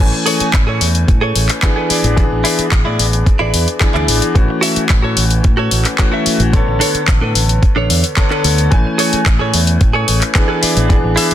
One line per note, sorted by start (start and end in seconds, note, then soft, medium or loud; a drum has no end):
0.00 0.11 A1 medium
0.00 1.59 E3 medium
0.00 1.60 A3 medium
0.00 1.60 C#4 medium
0.00 1.60 G#5 medium
0.12 muted clean electric guitar stroke soft
0.26 0.47 G#4 loud
0.26 0.47 A4 medium
0.26 0.48 C#5 loud
0.26 open hi-hat loud
0.40 muted fingered electric bass stroke soft
0.40 closed hi-hat medium
0.53 0.65 A1 medium
0.53 kick loud
0.53 clap loud
0.53 closed hi-hat medium
0.67 0.79 A2 medium
0.67 0.88 G#4 medium
0.67 0.88 A4 medium
0.67 0.89 C#5 medium
0.81 1.04 E2 medium
0.81 open hi-hat loud
0.95 closed hi-hat medium
1.07 1.31 A2 medium
1.07 muted clean electric guitar stroke soft
1.07 kick loud
1.07 closed hi-hat soft
1.21 1.49 G#4 loud
1.21 1.49 A4 loud
1.21 1.50 C#5 loud
1.35 1.47 A1 medium
1.35 open hi-hat medium
1.49 clap soft
1.49 closed hi-hat medium
1.62 2.14 E3 medium
1.62 2.15 B3 medium
1.62 2.15 D4 medium
1.62 2.15 G#4 medium
1.62 kick loud
1.62 clap loud
1.62 closed hi-hat medium
1.76 1.89 G#4 medium
1.76 1.90 A4 medium
1.76 1.91 B4 loud
1.89 2.23 E4 medium
1.89 2.23 G#4 medium
1.89 2.24 D5 medium
1.89 muted fingered electric bass stroke soft
1.89 open hi-hat loud
2.04 2.27 A1 medium
2.04 closed hi-hat medium
2.16 3.77 E3 medium
2.16 3.78 B3 medium
2.16 3.78 D4 medium
2.16 3.78 G#4 medium
2.16 kick loud
2.16 closed hi-hat soft
2.31 2.42 A1 medium
2.31 muted clean electric guitar stroke soft
2.44 2.65 E4 loud
2.44 2.65 G#4 medium
2.44 2.66 D5 loud
2.44 open hi-hat loud
2.59 muted fingered electric bass stroke soft
2.59 closed hi-hat medium
2.71 2.83 A1 medium
2.71 kick loud
2.71 clap loud
2.71 closed hi-hat medium
2.85 2.97 A2 medium
2.85 3.06 E4 medium
2.85 3.06 G#4 medium
2.85 3.07 D5 medium
2.99 3.22 A1 medium
2.99 open hi-hat loud
3.13 closed hi-hat medium
3.26 muted clean electric guitar stroke soft
3.26 kick loud
3.26 closed hi-hat soft
3.39 3.52 A1 medium
3.39 3.67 E4 loud
3.39 3.67 G#4 loud
3.39 3.68 D5 loud
3.54 3.65 E2 medium
3.54 open hi-hat loud
3.68 closed hi-hat medium
3.80 4.32 E3 medium
3.80 4.32 B3 medium
3.80 4.32 D4 medium
3.80 4.32 G#4 loud
3.80 kick loud
3.80 clap loud
3.80 closed hi-hat soft
3.94 4.06 D2 medium
3.94 4.22 E4 medium
3.94 4.22 G#4 medium
3.94 4.23 D5 loud
3.94 clap soft
4.08 4.20 A1 medium
4.08 open hi-hat loud
4.22 closed hi-hat medium
4.35 4.47 A1 loud
4.35 5.96 E3 medium
4.35 5.96 A3 medium
4.35 5.96 C#4 medium
4.35 5.97 F#4 medium
4.35 kick loud
4.35 closed hi-hat soft
4.48 muted clean electric guitar stroke soft
4.61 4.83 F#4 loud
4.61 4.83 A4 loud
4.61 4.84 E5 loud
4.61 open hi-hat loud
4.76 muted fingered electric bass stroke soft
4.76 closed hi-hat medium
4.89 5.02 A1 medium
4.89 kick loud
4.89 clap loud
4.89 closed hi-hat soft
5.02 5.15 A2 medium
5.02 5.24 F#4 medium
5.02 5.24 A4 medium
5.02 5.25 C#5 medium
5.17 5.40 A1 medium
5.17 open hi-hat loud
5.30 closed hi-hat medium
5.43 5.67 A2 medium
5.43 muted clean electric guitar stroke soft
5.43 kick loud
5.43 closed hi-hat soft
5.57 5.85 F#4 loud
5.57 5.85 A4 loud
5.57 5.86 C#5 loud
5.71 5.83 A1 medium
5.71 open hi-hat loud
5.85 clap soft
5.85 closed hi-hat medium
5.98 6.50 E3 medium
5.98 6.50 A3 medium
5.98 6.51 C#4 medium
5.98 6.51 F#4 medium
5.98 kick loud
5.98 clap loud
5.98 closed hi-hat soft
6.12 6.40 F#4 medium
6.12 6.40 A4 medium
6.12 6.41 E5 medium
6.26 muted fingered electric bass stroke soft
6.26 open hi-hat loud
6.40 6.63 A1 medium
6.40 closed hi-hat medium
6.53 8.14 D3 medium
6.53 8.14 B3 medium
6.53 8.15 A4 medium
6.53 8.14 C#5 medium
6.53 kick loud
6.53 closed hi-hat soft
6.66 6.79 A1 medium
6.66 muted clean electric guitar stroke soft
6.80 7.01 D4 loud
6.80 7.01 A4 loud
6.80 7.02 C#5 loud
6.80 open hi-hat loud
6.94 muted fingered electric bass stroke soft
6.94 closed hi-hat medium
7.08 7.20 A1 medium
7.08 kick loud
7.08 clap loud
7.08 closed hi-hat soft
7.21 7.33 A2 medium
7.21 7.42 D4 medium
7.21 7.43 A4 medium
7.21 7.43 B4 medium
7.35 7.58 A1 medium
7.35 open hi-hat loud
7.49 closed hi-hat medium
7.62 muted clean electric guitar stroke soft
7.62 kick loud
7.62 closed hi-hat soft
7.76 7.88 A1 medium
7.76 8.03 D4 loud
7.76 8.04 A4 loud
7.76 8.04 C#5 loud
7.90 8.01 E2 medium
7.90 open hi-hat loud
8.04 closed hi-hat medium
8.16 8.69 D3 medium
8.16 8.69 B3 medium
8.16 8.69 A4 medium
8.16 8.69 C#5 medium
8.16 kick loud
8.16 clap loud
8.16 closed hi-hat soft
8.30 8.58 D4 medium
8.30 8.59 A4 medium
8.30 8.59 B4 loud
8.30 clap soft
8.44 8.67 D2 medium
8.44 open hi-hat loud
8.58 closed hi-hat medium
8.71 8.83 A1 medium
8.71 10.32 E3 medium
8.71 10.32 A3 medium
8.71 10.32 C#4 medium
8.71 10.33 G#5 medium
8.71 kick loud
8.71 closed hi-hat soft
8.85 muted clean electric guitar stroke soft
8.98 9.19 G#4 loud
8.98 9.20 A4 loud
8.98 9.20 C#5 loud
8.98 open hi-hat loud
9.13 muted fingered electric bass stroke soft
9.13 closed hi-hat medium
9.26 9.38 A1 medium
9.26 kick loud
9.26 clap loud
9.26 closed hi-hat soft
9.39 9.52 A2 medium
9.39 9.60 G#4 medium
9.39 9.61 A4 medium
9.39 9.61 C#5 medium
9.54 9.77 E2 medium
9.54 open hi-hat loud
9.67 closed hi-hat medium
9.80 10.04 A2 medium
9.80 muted clean electric guitar stroke soft
9.80 kick loud
9.80 closed hi-hat soft
9.93 10.21 G#4 loud
9.93 10.22 A4 loud
9.93 10.22 C#5 loud
10.08 10.20 A1 medium
10.08 open hi-hat loud
10.21 clap soft
10.21 closed hi-hat medium
10.35 10.87 E3 medium
10.35 10.87 B3 medium
10.35 10.87 D4 medium
10.35 10.87 G#4 medium
10.35 kick loud
10.35 clap loud
10.35 closed hi-hat soft
10.48 10.61 G#4 medium
10.48 10.62 A4 medium
10.48 10.63 B4 loud
10.61 10.95 E4 medium
10.61 10.95 G#4 medium
10.61 10.96 D5 loud
10.61 muted fingered electric bass stroke soft
10.61 open hi-hat loud
10.77 10.99 A1 loud
10.77 closed hi-hat medium
10.89 11.34 E3 medium
10.89 11.34 B3 medium
10.89 11.34 D4 medium
10.89 11.34 G#4 medium
10.89 kick loud
10.89 closed hi-hat soft
11.02 11.15 A1 medium
11.02 muted clean electric guitar stroke soft
11.16 11.34 E4 loud
11.16 11.34 G#4 loud
11.16 11.34 E5 loud
11.16 open hi-hat medium
11.31 closed hi-hat medium